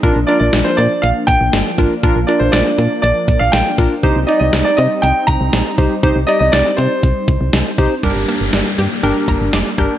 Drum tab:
HH |xxxxxxxo|xxxxxxxo|xxxxxxxo|xxxxxxxo|
SD |--o---o-|--o---o-|--o---o-|--o---o-|
BD |o----o-o|o----o-o|o----o-o|o---oo-o|

HH |xxxxxxxx|
SD |--o---o-|
BD |o----o-o|